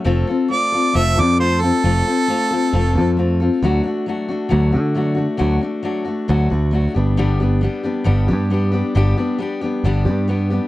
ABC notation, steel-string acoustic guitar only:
X:1
M:4/4
L:1/8
Q:1/4=135
K:Glyd
V:1 name="Steel-string acoustic guitar"
[=F,A,=C=FA] [CFA] [A,CFA] [CFA] [F,A,CFA] [CFA] [A,CFA] [CFA] | [=F,A,=C=FA] [CFA] [A,CFA] [CFA] [F,A,CFA] [CFA] [A,CFA] [CFA] | [D,F,A,DF] [A,DF] [F,A,DF] [A,DF] [D,F,A,DF] [A,DF] [F,A,DF] [A,DF] | [D,F,A,DF] [A,DF] [F,A,DF] [A,DF] [D,F,A,DF] [A,DF] [F,A,DF] [G,B,DG] |
[G,,D,G,B,DG] [G,B,DG] [G,B,DG] [G,B,DG] [G,,D,G,B,DG] [G,B,DG] [G,B,DG] [G,B,DG] | [G,,D,G,B,DG] [G,B,DG] [G,B,DG] [G,B,DG] [G,,D,G,B,DG] [G,B,DG] [G,B,DG] [G,B,DG] |]